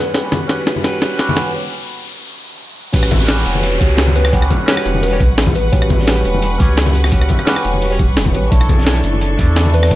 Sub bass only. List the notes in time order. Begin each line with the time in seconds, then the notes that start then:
0.15 A1
1.02 C#2
2.94 A1
3.46 E1
3.81 C#2
4.86 E1
5.20 C#2
5.30 A1
5.73 A1
6.25 E1
6.60 C#2
7.65 E1
8.09 C#2
8.17 E1
8.34 A1
8.52 B1
9.04 F#1
9.39 E2